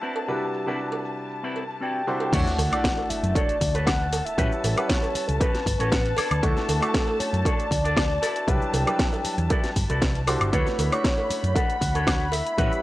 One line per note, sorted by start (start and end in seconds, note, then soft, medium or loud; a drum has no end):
0.00 0.43 C4 medium
0.00 0.44 D4 medium
0.00 0.44 E4 medium
0.00 0.44 F#4 medium
0.00 0.44 B4 loud
0.00 2.32 A5 medium
0.00 shaker medium
0.16 cowbell medium
0.16 shaker soft
0.28 0.64 C3 medium
0.28 0.64 G3 medium
0.28 0.64 D4 medium
0.28 0.64 E4 medium
0.28 0.64 F#4 medium
0.28 0.64 B4 medium
0.28 shaker soft
0.42 shaker soft
0.53 muted clean electric guitar stroke soft
0.53 shaker medium
0.66 2.04 C3 medium
0.66 2.04 G3 medium
0.66 0.79 C4 medium
0.66 2.05 D4 medium
0.66 0.79 D4 medium
0.66 0.79 E4 medium
0.66 2.05 E4 medium
0.66 0.79 F#4 medium
0.66 2.05 F#4 medium
0.66 0.79 B4 medium
0.66 2.05 B4 medium
0.66 shaker soft
0.80 shaker soft
0.92 muted clean electric guitar stroke medium
0.92 cowbell medium
1.04 muted clean electric guitar stroke soft
1.04 shaker medium
1.18 muted clean electric guitar stroke soft
1.18 shaker soft
1.31 shaker soft
1.43 1.63 C4 loud
1.43 1.63 D4 medium
1.43 1.63 E4 loud
1.43 1.63 F#4 medium
1.43 1.63 B4 loud
1.43 shaker soft
1.56 cowbell medium
1.56 shaker medium
1.70 shaker soft
1.81 2.01 C4 medium
1.81 2.01 D4 medium
1.81 2.01 E4 medium
1.81 2.01 F#4 medium
1.81 2.01 B4 medium
1.81 2.05 D5 medium
1.81 2.35 G5 loud
1.81 shaker soft
2.07 2.30 C3 medium
2.07 2.30 G3 medium
2.07 2.30 D4 medium
2.07 2.30 E4 medium
2.07 2.30 F#4 medium
2.07 2.30 C5 loud
2.07 2.31 F#5 medium
2.07 shaker medium
2.20 cowbell medium
2.20 shaker soft
2.32 2.43 D2 loud
2.32 2.68 A3 loud
2.32 2.69 D4 medium
2.32 2.46 D4 loud
2.32 2.69 E4 medium
2.32 2.69 F#4 medium
2.32 2.46 F#4 medium
2.32 2.47 A4 loud
2.32 2.69 C#5 loud
2.32 2.47 C#5 loud
2.32 3.11 F#5 loud
2.32 10.55 A5 medium
2.32 kick loud
2.32 closed hi-hat medium
2.32 crash loud
2.32 sub drop medium
2.32 shaker soft
2.47 snare soft
2.47 shaker soft
2.58 2.68 D2 loud
2.58 muted clean electric guitar stroke soft
2.58 open hi-hat loud
2.58 cowbell medium
2.58 shaker medium
2.71 4.35 A3 medium
2.71 4.35 D4 medium
2.71 4.35 E4 medium
2.71 4.35 F#4 medium
2.71 4.36 D5 loud
2.71 closed hi-hat medium
2.71 high woodblock medium
2.71 shaker soft
2.84 kick loud
2.84 snare loud
2.84 closed hi-hat medium
2.84 shaker soft
2.98 muted clean electric guitar stroke medium
2.98 cowbell medium
3.09 3.36 E5 loud
3.09 muted clean electric guitar stroke soft
3.09 muted picked electric bass stroke soft
3.09 open hi-hat loud
3.09 shaker medium
3.23 3.32 F#2 medium
3.23 closed hi-hat medium
3.23 shaker soft
3.34 3.55 D4 medium
3.34 3.55 F#4 medium
3.34 3.55 A4 medium
3.34 3.55 C#5 medium
3.34 3.76 D5 loud
3.34 kick loud
3.34 closed hi-hat medium
3.34 cowbell medium
3.34 shaker soft
3.49 closed hi-hat soft
3.49 shaker soft
3.61 4.20 D2 medium
3.61 kick medium
3.61 open hi-hat loud
3.61 shaker medium
3.74 4.06 D4 medium
3.74 4.06 F#4 medium
3.74 4.06 A4 medium
3.74 4.06 B4 loud
3.74 3.86 C#5 medium
3.74 closed hi-hat medium
3.74 cowbell medium
3.74 shaker soft
3.86 4.27 F#5 loud
3.86 kick loud
3.86 snare loud
3.86 closed hi-hat medium
3.86 high woodblock medium
3.86 shaker soft
4.13 open hi-hat loud
4.13 cowbell medium
4.13 shaker medium
4.25 4.90 E5 loud
4.25 closed hi-hat medium
4.25 shaker soft
4.37 4.48 A1 loud
4.37 4.74 G3 medium
4.37 4.51 C#4 loud
4.37 4.74 C#4 medium
4.37 4.74 E4 medium
4.37 4.51 F#4 medium
4.37 4.52 G4 loud
4.37 4.74 B4 loud
4.37 4.52 B4 loud
4.37 4.74 F#5 medium
4.37 kick loud
4.37 closed hi-hat medium
4.37 shaker soft
4.52 shaker soft
4.64 4.74 A1 loud
4.64 muted clean electric guitar stroke soft
4.64 open hi-hat loud
4.64 cowbell medium
4.64 shaker medium
4.76 6.15 G3 medium
4.76 6.16 C#4 medium
4.76 6.16 E4 medium
4.76 6.16 B4 loud
4.76 6.16 F#5 medium
4.76 closed hi-hat medium
4.76 high woodblock medium
4.76 shaker soft
4.88 5.29 C#5 loud
4.88 kick loud
4.88 snare loud
4.88 closed hi-hat medium
4.88 shaker soft
5.02 muted clean electric guitar stroke medium
5.02 cowbell medium
5.02 shaker soft
5.15 muted clean electric guitar stroke soft
5.15 muted picked electric bass stroke soft
5.15 open hi-hat loud
5.15 shaker medium
5.27 5.37 C#2 medium
5.27 5.41 A4 medium
5.27 closed hi-hat medium
5.27 shaker soft
5.39 5.60 C#4 medium
5.39 5.60 F#4 medium
5.39 5.60 G4 medium
5.39 5.90 B4 loud
5.39 5.60 B4 medium
5.39 kick loud
5.39 closed hi-hat medium
5.39 cowbell medium
5.39 shaker soft
5.54 muted picked electric bass stroke soft
5.54 snare soft
5.54 closed hi-hat soft
5.54 shaker soft
5.66 5.76 G1 medium
5.66 kick medium
5.66 open hi-hat loud
5.66 shaker medium
5.79 6.12 A1 medium
5.79 6.11 C#4 medium
5.79 6.11 F#4 medium
5.79 6.11 G4 medium
5.79 5.92 C#5 medium
5.79 closed hi-hat medium
5.79 cowbell medium
5.79 shaker soft
5.91 6.44 B4 loud
5.91 6.16 F#5 medium
5.91 kick loud
5.91 snare loud
5.91 closed hi-hat medium
5.91 shaker soft
6.06 closed hi-hat soft
6.17 6.59 D4 medium
6.17 6.59 F#4 medium
6.17 6.59 A4 medium
6.17 6.59 C#5 loud
6.17 6.41 D5 medium
6.17 muted picked electric bass stroke soft
6.17 open hi-hat loud
6.17 cowbell loud
6.17 high woodblock medium
6.17 shaker medium
6.31 6.40 D2 medium
6.31 closed hi-hat medium
6.31 high woodblock medium
6.31 shaker soft
6.42 6.53 D2 loud
6.42 6.79 A3 loud
6.42 6.79 D4 medium
6.42 6.79 E4 medium
6.42 6.79 F#4 medium
6.42 7.21 A4 loud
6.42 6.79 C#6 loud
6.42 kick loud
6.42 closed hi-hat medium
6.42 shaker soft
6.57 snare soft
6.57 shaker soft
6.68 6.79 D2 medium
6.68 muted clean electric guitar stroke soft
6.68 open hi-hat loud
6.68 cowbell loud
6.68 shaker medium
6.81 8.20 A3 medium
6.81 8.21 D4 medium
6.81 8.21 E4 medium
6.81 8.21 F#4 medium
6.81 8.21 C#6 loud
6.81 closed hi-hat medium
6.81 high woodblock medium
6.81 shaker soft
6.94 kick loud
6.94 snare loud
6.94 closed hi-hat medium
6.94 shaker soft
7.07 muted clean electric guitar stroke medium
7.07 cowbell medium
7.19 7.46 C#5 medium
7.19 muted picked electric bass stroke soft
7.19 open hi-hat loud
7.19 shaker medium
7.33 7.42 F#2 medium
7.33 closed hi-hat medium
7.33 shaker soft
7.44 7.65 D4 medium
7.44 7.65 F#4 medium
7.44 7.65 A4 medium
7.44 7.65 C#5 medium
7.44 8.49 D5 loud
7.44 kick loud
7.44 closed hi-hat medium
7.44 cowbell medium
7.44 shaker soft
7.60 closed hi-hat soft
7.60 shaker soft
7.71 8.17 D2 medium
7.71 kick medium
7.71 open hi-hat loud
7.71 shaker medium
7.84 8.16 D4 medium
7.84 8.16 F#4 medium
7.84 8.16 A4 medium
7.84 8.16 D5 loud
7.84 closed hi-hat medium
7.84 cowbell medium
7.84 shaker soft
7.97 kick loud
7.97 snare loud
7.97 closed hi-hat medium
7.97 high woodblock medium
7.97 shaker soft
8.22 8.64 E4 medium
8.22 8.64 F#4 medium
8.22 8.64 B4 medium
8.22 8.64 D5 medium
8.22 open hi-hat loud
8.22 cowbell medium
8.22 shaker medium
8.36 closed hi-hat medium
8.36 shaker soft
8.47 8.58 C2 loud
8.47 8.84 F#3 medium
8.47 8.84 G3 medium
8.47 8.84 D4 medium
8.47 8.84 E4 medium
8.47 8.84 B4 loud
8.47 9.25 G5 medium
8.47 kick loud
8.47 closed hi-hat medium
8.47 shaker soft
8.62 shaker soft
8.73 8.84 C2 loud
8.73 open hi-hat loud
8.73 cowbell loud
8.73 shaker medium
8.86 10.25 F#3 medium
8.86 10.25 G3 medium
8.86 10.25 D4 medium
8.86 10.25 E4 medium
8.86 10.25 B4 loud
8.86 closed hi-hat soft
8.86 high woodblock medium
8.86 shaker soft
8.99 kick loud
8.99 snare loud
8.99 closed hi-hat medium
8.99 shaker soft
9.13 muted clean electric guitar stroke medium
9.13 cowbell medium
9.13 shaker soft
9.25 muted picked electric bass stroke soft
9.25 muted clean electric guitar stroke soft
9.25 open hi-hat loud
9.25 shaker medium
9.38 9.47 E2 medium
9.38 closed hi-hat medium
9.38 shaker soft
9.50 9.70 E4 medium
9.50 9.70 F#4 medium
9.50 9.70 B4 medium
9.50 9.70 D5 medium
9.50 kick loud
9.50 closed hi-hat medium
9.50 cowbell medium
9.50 shaker soft
9.64 muted picked electric bass stroke soft
9.64 snare soft
9.64 closed hi-hat soft
9.64 shaker soft
9.76 9.86 G1 medium
9.76 kick medium
9.76 open hi-hat loud
9.76 shaker medium
9.89 10.35 C2 medium
9.89 10.21 E4 medium
9.89 10.21 F#4 medium
9.89 10.22 B4 medium
9.89 10.22 D5 medium
9.89 closed hi-hat medium
9.89 cowbell medium
9.89 shaker soft
10.02 kick loud
10.02 snare loud
10.02 closed hi-hat medium
10.02 shaker soft
10.15 closed hi-hat soft
10.27 10.50 G3 loud
10.27 10.50 D4 medium
10.27 10.50 E4 medium
10.27 10.50 F#4 medium
10.27 10.51 C5 loud
10.27 open hi-hat loud
10.27 cowbell medium
10.27 high woodblock medium
10.27 shaker medium
10.41 10.50 G1 medium
10.41 closed hi-hat soft
10.41 high woodblock medium
10.41 shaker soft
10.52 10.63 D2 loud
10.52 10.89 A3 loud
10.52 10.66 D4 loud
10.52 10.89 D4 medium
10.52 10.89 E4 medium
10.52 10.67 F#4 medium
10.52 10.89 F#4 medium
10.52 10.67 A4 loud
10.52 10.93 B4 loud
10.52 10.67 C#5 loud
10.52 10.89 C#5 loud
10.52 12.82 B5 medium
10.52 kick loud
10.52 closed hi-hat medium
10.52 shaker soft
10.67 snare soft
10.67 shaker soft
10.78 10.89 D2 loud
10.78 muted clean electric guitar stroke soft
10.78 open hi-hat loud
10.78 cowbell medium
10.78 shaker medium
10.91 12.55 A3 medium
10.91 12.55 D4 medium
10.91 12.55 E4 medium
10.91 12.56 F#4 medium
10.91 11.56 C#5 loud
10.91 12.56 C#6 loud
10.91 closed hi-hat soft
10.91 high woodblock medium
10.91 shaker soft
11.04 kick loud
11.04 snare loud
11.04 closed hi-hat medium
11.04 shaker soft
11.17 muted clean electric guitar stroke medium
11.17 cowbell medium
11.30 muted clean electric guitar stroke soft
11.30 muted picked electric bass stroke soft
11.30 open hi-hat loud
11.30 shaker medium
11.44 11.53 F#2 medium
11.44 closed hi-hat medium
11.44 shaker soft
11.55 11.75 D4 loud
11.55 11.75 F#4 medium
11.55 11.75 A4 medium
11.55 11.76 B4 medium
11.55 12.34 F#5 loud
11.55 kick loud
11.55 closed hi-hat medium
11.55 cowbell medium
11.55 shaker soft
11.70 closed hi-hat soft
11.70 shaker soft
11.81 12.40 D2 medium
11.81 kick medium
11.81 open hi-hat loud
11.81 shaker medium
11.94 12.26 D4 medium
11.94 12.27 F#4 medium
11.94 12.27 A4 medium
11.94 12.27 C#5 medium
11.94 closed hi-hat soft
11.94 cowbell medium
11.94 shaker soft
12.07 kick loud
12.07 snare loud
12.07 closed hi-hat medium
12.07 high woodblock medium
12.07 shaker soft
12.32 12.82 E5 loud
12.32 open hi-hat loud
12.32 cowbell medium
12.32 shaker medium
12.46 closed hi-hat soft
12.46 shaker soft
12.57 12.68 A1 loud
12.57 12.82 G3 loud
12.57 12.71 C#4 loud
12.57 12.82 C#4 medium
12.57 12.82 E4 medium
12.57 12.72 F#4 medium
12.57 12.72 G4 loud
12.57 12.72 B4 loud
12.57 12.82 B4 loud
12.57 12.82 F#5 medium
12.57 kick loud
12.57 closed hi-hat medium
12.57 shaker soft
12.72 shaker soft